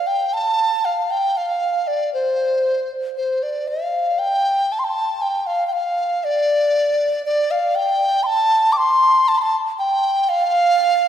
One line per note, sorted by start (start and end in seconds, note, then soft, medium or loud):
0.07 0.35 G5 medium
0.34 0.86 A5 medium
0.85 1.12 F5 medium
1.11 1.39 G5 medium
1.37 1.89 F5 medium
1.87 2.13 D5 medium
2.14 2.90 C5 medium
3.17 3.44 C5 medium
3.43 3.69 D5 medium
3.68 4.20 F5 medium
4.19 4.74 G5 medium
4.72 4.81 A5 medium
4.79 4.86 C6 medium
4.84 5.23 A5 medium
5.22 5.48 G5 medium
5.47 5.67 F5 medium
5.67 5.74 G5 soft
5.73 6.26 F5 medium
6.24 7.25 D5 medium
7.26 7.52 D5 medium
7.51 7.77 F5 medium
7.75 8.25 G5 medium
8.23 8.74 A5 medium
8.23 8.28 C6 medium
8.72 8.79 D6 medium
8.77 9.30 C6 medium
9.28 9.39 A5 medium
9.38 9.55 A5 medium
9.38 9.43 C6 medium
9.79 10.31 G5 medium
10.29 11.08 F5 loud